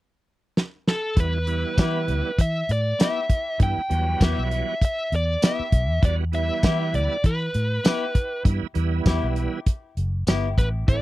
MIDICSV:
0, 0, Header, 1, 7, 480
1, 0, Start_track
1, 0, Key_signature, 1, "minor"
1, 0, Tempo, 607287
1, 926, Time_signature, 4, 2, 24, 8
1, 8709, End_track
2, 0, Start_track
2, 0, Title_t, "Lead electric guitar"
2, 0, Program_c, 0, 29
2, 707, Note_on_c, 0, 69, 73
2, 943, Note_off_c, 0, 69, 0
2, 949, Note_on_c, 0, 71, 79
2, 1903, Note_off_c, 0, 71, 0
2, 1906, Note_on_c, 0, 76, 81
2, 2143, Note_off_c, 0, 76, 0
2, 2152, Note_on_c, 0, 74, 83
2, 2384, Note_off_c, 0, 74, 0
2, 2388, Note_on_c, 0, 76, 93
2, 2825, Note_off_c, 0, 76, 0
2, 2869, Note_on_c, 0, 79, 89
2, 3350, Note_on_c, 0, 76, 95
2, 3351, Note_off_c, 0, 79, 0
2, 3822, Note_off_c, 0, 76, 0
2, 3831, Note_on_c, 0, 76, 89
2, 4042, Note_off_c, 0, 76, 0
2, 4075, Note_on_c, 0, 74, 87
2, 4307, Note_off_c, 0, 74, 0
2, 4312, Note_on_c, 0, 76, 87
2, 4780, Note_off_c, 0, 76, 0
2, 4783, Note_on_c, 0, 74, 93
2, 4845, Note_off_c, 0, 74, 0
2, 5018, Note_on_c, 0, 76, 96
2, 5492, Note_off_c, 0, 76, 0
2, 5495, Note_on_c, 0, 74, 83
2, 5714, Note_off_c, 0, 74, 0
2, 5739, Note_on_c, 0, 71, 71
2, 6660, Note_off_c, 0, 71, 0
2, 8367, Note_on_c, 0, 71, 77
2, 8431, Note_off_c, 0, 71, 0
2, 8605, Note_on_c, 0, 74, 79
2, 8709, Note_off_c, 0, 74, 0
2, 8709, End_track
3, 0, Start_track
3, 0, Title_t, "Clean electric guitar"
3, 0, Program_c, 1, 27
3, 1404, Note_on_c, 1, 59, 70
3, 1407, Note_on_c, 1, 64, 83
3, 1416, Note_on_c, 1, 67, 81
3, 1559, Note_off_c, 1, 59, 0
3, 1560, Note_off_c, 1, 64, 0
3, 1565, Note_off_c, 1, 67, 0
3, 2363, Note_on_c, 1, 59, 72
3, 2370, Note_on_c, 1, 64, 79
3, 2374, Note_on_c, 1, 67, 82
3, 2518, Note_off_c, 1, 59, 0
3, 2522, Note_off_c, 1, 64, 0
3, 2524, Note_off_c, 1, 67, 0
3, 3322, Note_on_c, 1, 59, 81
3, 3330, Note_on_c, 1, 64, 75
3, 3336, Note_on_c, 1, 67, 84
3, 3478, Note_off_c, 1, 59, 0
3, 3482, Note_off_c, 1, 64, 0
3, 3485, Note_off_c, 1, 67, 0
3, 4286, Note_on_c, 1, 59, 71
3, 4293, Note_on_c, 1, 64, 73
3, 4297, Note_on_c, 1, 67, 77
3, 4440, Note_off_c, 1, 59, 0
3, 4443, Note_off_c, 1, 64, 0
3, 4445, Note_off_c, 1, 67, 0
3, 5242, Note_on_c, 1, 59, 71
3, 5249, Note_on_c, 1, 64, 80
3, 5255, Note_on_c, 1, 67, 85
3, 5397, Note_off_c, 1, 59, 0
3, 5401, Note_off_c, 1, 64, 0
3, 5404, Note_off_c, 1, 67, 0
3, 6198, Note_on_c, 1, 59, 77
3, 6203, Note_on_c, 1, 64, 77
3, 6209, Note_on_c, 1, 67, 84
3, 6355, Note_off_c, 1, 59, 0
3, 6358, Note_off_c, 1, 64, 0
3, 6361, Note_off_c, 1, 67, 0
3, 7160, Note_on_c, 1, 59, 82
3, 7166, Note_on_c, 1, 64, 91
3, 7172, Note_on_c, 1, 67, 89
3, 7316, Note_off_c, 1, 59, 0
3, 7319, Note_off_c, 1, 64, 0
3, 7322, Note_off_c, 1, 67, 0
3, 8117, Note_on_c, 1, 59, 81
3, 8125, Note_on_c, 1, 64, 80
3, 8129, Note_on_c, 1, 67, 89
3, 8274, Note_off_c, 1, 59, 0
3, 8278, Note_off_c, 1, 64, 0
3, 8280, Note_off_c, 1, 67, 0
3, 8709, End_track
4, 0, Start_track
4, 0, Title_t, "Tonewheel organ"
4, 0, Program_c, 2, 16
4, 916, Note_on_c, 2, 52, 66
4, 920, Note_on_c, 2, 55, 51
4, 922, Note_on_c, 2, 59, 56
4, 927, Note_on_c, 2, 64, 64
4, 1094, Note_off_c, 2, 52, 0
4, 1096, Note_off_c, 2, 55, 0
4, 1097, Note_off_c, 2, 59, 0
4, 1099, Note_off_c, 2, 64, 0
4, 1156, Note_on_c, 2, 52, 73
4, 1161, Note_on_c, 2, 55, 64
4, 1166, Note_on_c, 2, 59, 65
4, 1166, Note_on_c, 2, 64, 73
4, 1827, Note_off_c, 2, 52, 0
4, 1830, Note_off_c, 2, 55, 0
4, 1832, Note_off_c, 2, 59, 0
4, 1832, Note_off_c, 2, 64, 0
4, 2838, Note_on_c, 2, 52, 62
4, 2840, Note_on_c, 2, 55, 58
4, 2841, Note_on_c, 2, 59, 53
4, 2846, Note_on_c, 2, 64, 69
4, 3015, Note_off_c, 2, 52, 0
4, 3015, Note_off_c, 2, 55, 0
4, 3016, Note_off_c, 2, 59, 0
4, 3019, Note_off_c, 2, 64, 0
4, 3076, Note_on_c, 2, 52, 67
4, 3079, Note_on_c, 2, 55, 69
4, 3084, Note_on_c, 2, 59, 62
4, 3086, Note_on_c, 2, 54, 78
4, 3747, Note_off_c, 2, 52, 0
4, 3749, Note_off_c, 2, 55, 0
4, 3751, Note_off_c, 2, 59, 0
4, 3752, Note_off_c, 2, 54, 0
4, 4754, Note_on_c, 2, 52, 62
4, 4757, Note_on_c, 2, 55, 60
4, 4760, Note_on_c, 2, 59, 62
4, 4764, Note_on_c, 2, 66, 70
4, 4932, Note_off_c, 2, 52, 0
4, 4934, Note_off_c, 2, 55, 0
4, 4936, Note_off_c, 2, 59, 0
4, 4937, Note_off_c, 2, 66, 0
4, 4994, Note_on_c, 2, 52, 76
4, 4999, Note_on_c, 2, 55, 65
4, 5000, Note_on_c, 2, 59, 72
4, 5003, Note_on_c, 2, 64, 78
4, 5666, Note_off_c, 2, 52, 0
4, 5668, Note_off_c, 2, 55, 0
4, 5669, Note_off_c, 2, 59, 0
4, 5671, Note_off_c, 2, 64, 0
4, 6671, Note_on_c, 2, 52, 73
4, 6675, Note_on_c, 2, 55, 71
4, 6679, Note_on_c, 2, 59, 73
4, 6683, Note_on_c, 2, 64, 89
4, 6851, Note_off_c, 2, 52, 0
4, 6852, Note_off_c, 2, 55, 0
4, 6854, Note_off_c, 2, 59, 0
4, 6857, Note_off_c, 2, 64, 0
4, 6909, Note_on_c, 2, 52, 84
4, 6916, Note_on_c, 2, 55, 80
4, 6918, Note_on_c, 2, 59, 85
4, 6923, Note_on_c, 2, 64, 95
4, 7583, Note_off_c, 2, 52, 0
4, 7586, Note_off_c, 2, 55, 0
4, 7587, Note_off_c, 2, 59, 0
4, 7590, Note_off_c, 2, 64, 0
4, 8590, Note_on_c, 2, 52, 58
4, 8596, Note_on_c, 2, 57, 59
4, 8596, Note_on_c, 2, 60, 55
4, 8601, Note_on_c, 2, 64, 70
4, 8709, Note_off_c, 2, 52, 0
4, 8709, Note_off_c, 2, 57, 0
4, 8709, Note_off_c, 2, 60, 0
4, 8709, Note_off_c, 2, 64, 0
4, 8709, End_track
5, 0, Start_track
5, 0, Title_t, "Fingered electric bass"
5, 0, Program_c, 3, 33
5, 922, Note_on_c, 3, 40, 91
5, 1291, Note_off_c, 3, 40, 0
5, 1406, Note_on_c, 3, 52, 84
5, 1644, Note_on_c, 3, 38, 77
5, 1656, Note_off_c, 3, 52, 0
5, 1746, Note_off_c, 3, 38, 0
5, 1885, Note_on_c, 3, 52, 83
5, 2069, Note_off_c, 3, 52, 0
5, 2127, Note_on_c, 3, 45, 77
5, 2310, Note_off_c, 3, 45, 0
5, 2844, Note_on_c, 3, 43, 94
5, 2946, Note_off_c, 3, 43, 0
5, 3087, Note_on_c, 3, 40, 82
5, 3270, Note_off_c, 3, 40, 0
5, 3325, Note_on_c, 3, 40, 94
5, 3427, Note_off_c, 3, 40, 0
5, 3461, Note_on_c, 3, 35, 76
5, 3643, Note_off_c, 3, 35, 0
5, 4048, Note_on_c, 3, 40, 82
5, 4231, Note_off_c, 3, 40, 0
5, 4524, Note_on_c, 3, 35, 82
5, 4659, Note_off_c, 3, 35, 0
5, 4659, Note_on_c, 3, 40, 80
5, 4741, Note_off_c, 3, 40, 0
5, 4763, Note_on_c, 3, 40, 90
5, 5132, Note_off_c, 3, 40, 0
5, 5242, Note_on_c, 3, 52, 85
5, 5483, Note_on_c, 3, 38, 75
5, 5495, Note_off_c, 3, 52, 0
5, 5586, Note_off_c, 3, 38, 0
5, 5723, Note_on_c, 3, 52, 81
5, 5908, Note_off_c, 3, 52, 0
5, 5966, Note_on_c, 3, 45, 85
5, 6149, Note_off_c, 3, 45, 0
5, 6681, Note_on_c, 3, 43, 95
5, 6784, Note_off_c, 3, 43, 0
5, 6921, Note_on_c, 3, 40, 84
5, 7106, Note_off_c, 3, 40, 0
5, 7159, Note_on_c, 3, 40, 90
5, 7262, Note_off_c, 3, 40, 0
5, 7295, Note_on_c, 3, 35, 78
5, 7479, Note_off_c, 3, 35, 0
5, 7880, Note_on_c, 3, 30, 78
5, 8098, Note_off_c, 3, 30, 0
5, 8118, Note_on_c, 3, 31, 79
5, 8336, Note_off_c, 3, 31, 0
5, 8358, Note_on_c, 3, 33, 76
5, 8576, Note_off_c, 3, 33, 0
5, 8601, Note_on_c, 3, 33, 88
5, 8709, Note_off_c, 3, 33, 0
5, 8709, End_track
6, 0, Start_track
6, 0, Title_t, "Muted fingered electric bass strokes"
6, 2982, Note_on_c, 9, 29, 32
6, 3061, Note_off_c, 9, 29, 0
6, 4423, Note_on_c, 9, 29, 38
6, 4502, Note_off_c, 9, 29, 0
6, 6818, Note_on_c, 9, 29, 35
6, 6897, Note_off_c, 9, 29, 0
6, 8709, End_track
7, 0, Start_track
7, 0, Title_t, "Drums"
7, 452, Note_on_c, 9, 38, 75
7, 531, Note_off_c, 9, 38, 0
7, 692, Note_on_c, 9, 38, 83
7, 771, Note_off_c, 9, 38, 0
7, 922, Note_on_c, 9, 42, 84
7, 923, Note_on_c, 9, 36, 108
7, 1001, Note_off_c, 9, 42, 0
7, 1002, Note_off_c, 9, 36, 0
7, 1163, Note_on_c, 9, 42, 59
7, 1242, Note_off_c, 9, 42, 0
7, 1404, Note_on_c, 9, 36, 81
7, 1406, Note_on_c, 9, 42, 84
7, 1406, Note_on_c, 9, 54, 102
7, 1416, Note_on_c, 9, 38, 105
7, 1483, Note_off_c, 9, 36, 0
7, 1485, Note_off_c, 9, 42, 0
7, 1485, Note_off_c, 9, 54, 0
7, 1495, Note_off_c, 9, 38, 0
7, 1646, Note_on_c, 9, 42, 57
7, 1725, Note_off_c, 9, 42, 0
7, 1885, Note_on_c, 9, 36, 80
7, 1886, Note_on_c, 9, 42, 86
7, 1964, Note_off_c, 9, 36, 0
7, 1965, Note_off_c, 9, 42, 0
7, 2128, Note_on_c, 9, 42, 66
7, 2207, Note_off_c, 9, 42, 0
7, 2369, Note_on_c, 9, 42, 85
7, 2369, Note_on_c, 9, 54, 113
7, 2379, Note_on_c, 9, 38, 112
7, 2448, Note_off_c, 9, 42, 0
7, 2448, Note_off_c, 9, 54, 0
7, 2458, Note_off_c, 9, 38, 0
7, 2605, Note_on_c, 9, 36, 78
7, 2605, Note_on_c, 9, 42, 62
7, 2684, Note_off_c, 9, 36, 0
7, 2684, Note_off_c, 9, 42, 0
7, 2844, Note_on_c, 9, 42, 78
7, 2845, Note_on_c, 9, 36, 108
7, 2923, Note_off_c, 9, 42, 0
7, 2924, Note_off_c, 9, 36, 0
7, 3088, Note_on_c, 9, 42, 56
7, 3167, Note_off_c, 9, 42, 0
7, 3325, Note_on_c, 9, 36, 84
7, 3327, Note_on_c, 9, 42, 79
7, 3327, Note_on_c, 9, 54, 101
7, 3337, Note_on_c, 9, 38, 111
7, 3404, Note_off_c, 9, 36, 0
7, 3406, Note_off_c, 9, 42, 0
7, 3406, Note_off_c, 9, 54, 0
7, 3416, Note_off_c, 9, 38, 0
7, 3567, Note_on_c, 9, 42, 55
7, 3646, Note_off_c, 9, 42, 0
7, 3806, Note_on_c, 9, 36, 76
7, 3809, Note_on_c, 9, 42, 74
7, 3885, Note_off_c, 9, 36, 0
7, 3888, Note_off_c, 9, 42, 0
7, 4050, Note_on_c, 9, 42, 56
7, 4129, Note_off_c, 9, 42, 0
7, 4286, Note_on_c, 9, 42, 85
7, 4286, Note_on_c, 9, 54, 107
7, 4297, Note_on_c, 9, 38, 116
7, 4365, Note_off_c, 9, 42, 0
7, 4365, Note_off_c, 9, 54, 0
7, 4376, Note_off_c, 9, 38, 0
7, 4524, Note_on_c, 9, 36, 74
7, 4524, Note_on_c, 9, 42, 58
7, 4603, Note_off_c, 9, 36, 0
7, 4603, Note_off_c, 9, 42, 0
7, 4763, Note_on_c, 9, 36, 115
7, 4763, Note_on_c, 9, 42, 83
7, 4842, Note_off_c, 9, 36, 0
7, 4842, Note_off_c, 9, 42, 0
7, 5004, Note_on_c, 9, 42, 55
7, 5083, Note_off_c, 9, 42, 0
7, 5241, Note_on_c, 9, 42, 80
7, 5241, Note_on_c, 9, 54, 108
7, 5243, Note_on_c, 9, 36, 85
7, 5251, Note_on_c, 9, 38, 108
7, 5320, Note_off_c, 9, 42, 0
7, 5320, Note_off_c, 9, 54, 0
7, 5322, Note_off_c, 9, 36, 0
7, 5330, Note_off_c, 9, 38, 0
7, 5486, Note_on_c, 9, 42, 60
7, 5565, Note_off_c, 9, 42, 0
7, 5722, Note_on_c, 9, 36, 82
7, 5722, Note_on_c, 9, 42, 76
7, 5801, Note_off_c, 9, 36, 0
7, 5801, Note_off_c, 9, 42, 0
7, 5962, Note_on_c, 9, 42, 68
7, 6041, Note_off_c, 9, 42, 0
7, 6201, Note_on_c, 9, 42, 89
7, 6201, Note_on_c, 9, 54, 113
7, 6211, Note_on_c, 9, 38, 115
7, 6280, Note_off_c, 9, 42, 0
7, 6280, Note_off_c, 9, 54, 0
7, 6290, Note_off_c, 9, 38, 0
7, 6441, Note_on_c, 9, 36, 79
7, 6442, Note_on_c, 9, 42, 65
7, 6520, Note_off_c, 9, 36, 0
7, 6521, Note_off_c, 9, 42, 0
7, 6680, Note_on_c, 9, 36, 106
7, 6680, Note_on_c, 9, 42, 86
7, 6759, Note_off_c, 9, 36, 0
7, 6759, Note_off_c, 9, 42, 0
7, 6917, Note_on_c, 9, 42, 63
7, 6996, Note_off_c, 9, 42, 0
7, 7159, Note_on_c, 9, 42, 85
7, 7159, Note_on_c, 9, 54, 112
7, 7160, Note_on_c, 9, 36, 83
7, 7169, Note_on_c, 9, 38, 108
7, 7238, Note_off_c, 9, 42, 0
7, 7238, Note_off_c, 9, 54, 0
7, 7239, Note_off_c, 9, 36, 0
7, 7248, Note_off_c, 9, 38, 0
7, 7398, Note_on_c, 9, 42, 63
7, 7477, Note_off_c, 9, 42, 0
7, 7639, Note_on_c, 9, 36, 75
7, 7639, Note_on_c, 9, 42, 78
7, 7718, Note_off_c, 9, 36, 0
7, 7718, Note_off_c, 9, 42, 0
7, 7881, Note_on_c, 9, 42, 59
7, 7960, Note_off_c, 9, 42, 0
7, 8117, Note_on_c, 9, 42, 82
7, 8117, Note_on_c, 9, 54, 115
7, 8128, Note_on_c, 9, 38, 115
7, 8196, Note_off_c, 9, 42, 0
7, 8196, Note_off_c, 9, 54, 0
7, 8207, Note_off_c, 9, 38, 0
7, 8359, Note_on_c, 9, 36, 76
7, 8362, Note_on_c, 9, 42, 56
7, 8438, Note_off_c, 9, 36, 0
7, 8441, Note_off_c, 9, 42, 0
7, 8599, Note_on_c, 9, 36, 111
7, 8600, Note_on_c, 9, 42, 76
7, 8678, Note_off_c, 9, 36, 0
7, 8679, Note_off_c, 9, 42, 0
7, 8709, End_track
0, 0, End_of_file